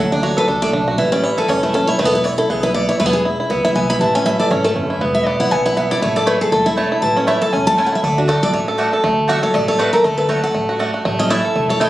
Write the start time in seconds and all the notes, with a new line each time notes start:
Already playing: D2 A3 A4
0.00 F#3 F#5
0.12 D4 D5
0.23 F#4 C#5
0.37 A4 B4
0.48 C#2 D4 A4
0.62 A3 D5
0.73 B1 D4
0.88 F#4
0.98 A1 E3 E5
1.12 C#4 D5
1.23 E4 C#5
1.38 A4 B4
1.48 E1 C#4 C#5
1.63 A3 E4
1.74 C#4 A4
1.87 E4 C#5
1.99 E1 A3 B4
2.05 B3 A4
2.13 E4 B4
2.24 E4 C#5
2.38 E4 A4
2.50 B1 B3 G#4
2.63 E4 B4
2.74 B3 D5
2.89 E4 C#5
3.00 E1 A3 B4
3.06 B3
3.13 G#4
3.25 E4
3.40 E4
3.50 C#2 B3 B4
3.65 E4 E5
3.75 B1 B3 G#5
3.90 E4 B5
4.00 A1 E3 A5
4.15 C#4 G#5
4.26 E4 E5
4.39 A4 D5
4.50 G#1 C#4 C#5
4.64 A3 A4
4.76 F#1 C#4
4.90 E4
5.00 E1 B3
5.15 E5
5.26 B3 D5
5.40 E4 F#5
5.51 B1 B3 G#5
5.66 E4 F#5
5.77 B3 E5
5.91 E4 D5
6.02 A1 A3 C#5
6.16 A4 D5
6.26 A3 E4 B4 C#5 A5
6.41 G#4 A4
6.52 E1 A3 A4
6.66 E4
6.77 A3 E4 C#5 A5
6.92 E4
7.02 A1 E3 A5
7.16 C#4 C#5
7.27 A3 E4 C#5 E5 A5
7.42 A4 A5
7.53 E1 C#4 G#5
7.67 A3 A5
7.77 A3 C#4 E4 C#5 G#5 A5
7.86 F#5
7.93 E4 E5
8.03 D2 A3 D5
8.18 D4 F#4
8.28 A3 F#4 A4 D5 F#5
8.43 A4 D5
8.53 A1 A3 C#5
8.68 A4
8.78 A3 F#4 D5 F#5
8.93 A4
9.04 D2 A3
9.28 A3 F#4 D5 E5 F#5
9.43 A4 C#5
9.54 A1 A3 D5
9.68 A4 C#5
9.78 A3 F#4 B4 D5 F#5
9.93 A4 A#4
10.04 D2 A3 A4
10.18 A4 B4
10.29 A3 F#4 C#5 D5 F#5
10.44 A4 F#5
10.55 A1 A3
10.69 F#4
10.79 A3 F#4 D5 F#5
10.94 F#4
11.05 A1 A3
11.19 C#4 D#5
11.30 A3 E4 C#5 E5 A5
11.45 A4
11.56 E1 A3
11.69 A4 C#5
11.80 A3 E4 C#5 D#5 A5